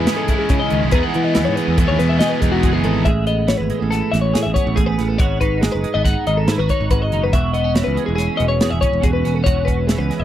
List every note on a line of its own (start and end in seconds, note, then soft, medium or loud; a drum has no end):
0.00 0.90 G#2 medium
0.00 0.91 C#3 medium
0.00 1.34 E3 medium
0.00 0.92 G#3 medium
0.00 0.93 B3 medium
0.00 0.92 C#4 medium
0.00 0.28 E4 medium
0.00 0.93 E4 medium
0.00 0.94 G#4 medium
0.00 0.17 B4 medium
0.07 0.94 G#4 medium
0.07 snare loud
0.07 closed hi-hat medium
0.17 0.38 A4 medium
0.28 0.93 E4 medium
0.28 kick medium
0.28 closed hi-hat medium
0.39 0.60 G#4 medium
0.49 0.70 C#3 medium
0.49 0.60 C#3 medium
0.49 kick medium
0.49 closed hi-hat medium
0.60 0.82 D#5 medium
0.70 0.81 C#2 medium
0.70 0.93 D#3 medium
0.70 closed hi-hat medium
0.83 0.92 B1 medium
0.91 1.02 E2 medium
0.91 2.62 E2 medium
0.91 1.76 E3 medium
0.91 1.77 G#3 medium
0.91 2.63 G#3 soft
0.91 1.77 B3 medium
0.91 1.15 D#4 medium
0.91 1.77 E4 medium
0.91 1.78 G#4 medium
0.91 1.57 G#4 medium
0.91 1.03 B4 medium
0.91 kick loud
0.91 closed hi-hat medium
1.03 1.24 F#5 medium
1.14 1.38 E3 medium
1.14 closed hi-hat medium
1.24 1.46 D#5 medium
1.35 1.46 E2 medium
1.35 3.46 E3 medium
1.35 snare loud
1.35 closed hi-hat medium
1.45 1.57 G#2 medium
1.45 1.56 C#5 medium
1.56 2.20 G#4 medium
1.56 1.78 B4 medium
1.56 closed hi-hat medium
1.68 1.87 E2 medium
1.78 3.06 E3 medium
1.78 3.06 G#3 medium
1.78 3.06 B3 medium
1.78 3.06 E4 medium
1.78 1.89 A4 medium
1.78 kick loud
1.78 closed hi-hat medium
1.82 3.07 G#4 medium
1.88 1.98 D#2 medium
1.88 1.99 C#5 medium
1.99 2.19 E2 medium
1.99 3.06 B2 medium
1.99 2.10 B4 medium
1.99 snare soft
1.99 closed hi-hat medium
2.09 2.19 E5 medium
2.19 2.64 G#4 medium
2.19 2.31 D#5 medium
2.19 snare loud
2.19 closed hi-hat medium
2.29 2.41 B4 medium
2.41 2.61 E1 medium
2.41 2.63 D#4 medium
2.41 2.52 G#4 medium
2.41 kick medium
2.41 closed hi-hat medium
2.52 2.73 F#4 medium
2.63 2.83 F#1 medium
2.63 3.05 E2 medium
2.63 3.69 G#3 medium
2.63 2.84 D#4 medium
2.63 3.05 G#4 medium
2.63 kick medium
2.63 closed hi-hat medium
2.73 2.84 G#4 medium
2.84 3.04 G#1 medium
2.84 3.04 D#4 medium
2.84 3.06 A4 medium
2.84 closed hi-hat medium
3.05 3.54 A1 medium
3.05 4.74 A2 medium
3.05 4.33 G#4 medium
3.05 3.27 E5 medium
3.05 kick medium
3.05 closed hi-hat medium
3.27 3.91 B3 medium
3.27 3.49 D#5 medium
3.27 closed hi-hat soft
3.47 4.11 E3 medium
3.47 3.58 C#5 medium
3.47 snare medium
3.47 closed hi-hat medium
3.58 3.70 G#1 medium
3.58 3.79 B4 medium
3.70 5.62 G#3 soft
3.70 closed hi-hat medium
3.79 4.01 A1 medium
3.79 3.89 A4 medium
3.91 4.54 B3 medium
3.91 4.13 A4 medium
3.91 snare soft
3.91 closed hi-hat medium
4.12 4.32 A1 medium
4.12 5.17 E3 medium
4.12 4.21 E5 medium
4.12 snare soft
4.12 closed hi-hat medium
4.21 4.42 C#5 medium
4.33 4.45 A2 medium
4.33 4.75 G#4 medium
4.33 snare loud
4.33 closed hi-hat medium
4.43 4.54 E5 medium
4.47 4.56 A1 medium
4.54 4.98 B3 medium
4.54 4.76 C#5 medium
4.54 kick medium
4.54 closed hi-hat medium
4.67 4.76 A1 medium
4.75 4.97 A1 medium
4.75 5.16 A2 medium
4.75 5.20 G#4 medium
4.75 4.86 G#4 medium
4.75 kick medium
4.75 closed hi-hat medium
4.86 5.08 B4 medium
4.98 5.18 A1 medium
4.98 5.41 B3 medium
4.98 snare soft
4.98 closed hi-hat medium
5.08 5.18 A4 medium
5.18 5.68 G#1 medium
5.18 6.90 G#2 medium
5.18 6.47 F#4 medium
5.18 5.40 C#5 medium
5.18 kick loud
5.18 closed hi-hat medium
5.41 6.05 D#4 medium
5.41 5.61 B4 medium
5.41 kick medium
5.41 closed hi-hat medium
5.61 5.83 G#3 medium
5.61 5.72 G#4 medium
5.61 snare medium
5.61 closed hi-hat medium
5.72 5.84 F#1 medium
5.72 5.94 B4 medium
5.83 5.95 G#3 soft
5.83 closed hi-hat medium
5.94 6.14 G#1 medium
5.94 7.34 B3 soft
5.94 6.04 D#5 medium
6.05 6.70 D#4 medium
6.05 6.26 F#5 medium
6.05 kick medium
6.05 snare soft
6.05 closed hi-hat medium
6.27 6.46 G#1 medium
6.27 7.31 D#3 medium
6.27 6.38 D#5 medium
6.27 closed hi-hat medium
6.37 6.58 A4 medium
6.48 6.58 G#2 medium
6.48 6.59 E4 medium
6.48 snare loud
6.48 closed hi-hat medium
6.58 6.68 G#1 medium
6.58 6.90 F#4 soft
6.58 6.69 B4 medium
6.69 7.12 D#4 medium
6.69 6.90 C#5 medium
6.69 kick medium
6.69 closed hi-hat soft
6.80 6.90 G#1 medium
6.91 7.10 G#1 medium
6.91 7.32 G#2 medium
6.91 7.34 F#4 soft
6.91 7.02 B4 medium
6.91 kick medium
6.91 closed hi-hat medium
7.02 7.23 D#5 medium
7.12 7.32 F#1 medium
7.12 7.31 D#4 medium
7.12 closed hi-hat medium
7.24 7.34 B4 medium
7.33 7.82 E1 medium
7.33 9.00 E2 medium
7.33 8.60 F#4 medium
7.33 7.53 E5 medium
7.33 kick medium
7.33 closed hi-hat medium
7.54 7.64 B3 medium
7.54 7.75 D#5 medium
7.54 closed hi-hat soft
7.64 8.17 C#4 soft
7.75 9.88 E3 medium
7.75 7.86 C#5 medium
7.75 snare medium
7.75 closed hi-hat medium
7.84 7.97 C#2 medium
7.84 8.06 B4 medium
7.96 10.10 G#3 soft
7.96 closed hi-hat medium
8.06 8.28 E1 medium
8.06 8.14 G#4 medium
8.16 8.82 C#4 medium
8.16 8.39 G#4 medium
8.16 snare soft
8.16 closed hi-hat medium
8.37 8.60 E1 medium
8.37 9.47 B2 medium
8.37 8.48 D#5 medium
8.37 closed hi-hat medium
8.48 8.70 C#5 medium
8.61 8.71 E2 medium
8.61 9.02 G#4 medium
8.61 snare loud
8.61 closed hi-hat medium
8.70 8.82 E1 medium
8.70 8.81 E5 medium
8.81 9.24 C#4 medium
8.81 9.04 C#5 medium
8.81 kick medium
8.81 closed hi-hat medium
8.93 9.03 E1 medium
9.02 9.23 E1 medium
9.02 9.44 E2 medium
9.02 9.44 F#4 medium
9.02 9.13 G#4 medium
9.02 kick medium
9.02 closed hi-hat medium
9.13 9.35 B4 medium
9.25 9.45 E1 medium
9.25 9.66 C#4 medium
9.25 snare soft
9.25 closed hi-hat medium
9.35 9.47 A4 medium
9.44 9.95 E1 medium
9.44 10.24 E2 medium
9.44 10.24 F#4 medium
9.44 9.67 C#5 medium
9.44 kick medium
9.44 closed hi-hat medium
9.65 10.24 C#4 medium
9.65 9.87 B4 medium
9.65 kick medium
9.65 closed hi-hat medium
9.87 10.24 E3 medium
9.87 9.98 G#4 medium
9.87 snare medium
9.87 closed hi-hat medium
9.98 10.09 C#2 medium
9.98 10.21 B4 medium
10.10 10.24 G#3 medium
10.10 snare soft
10.10 closed hi-hat soft
10.20 10.24 E1 medium
10.20 10.24 D#5 medium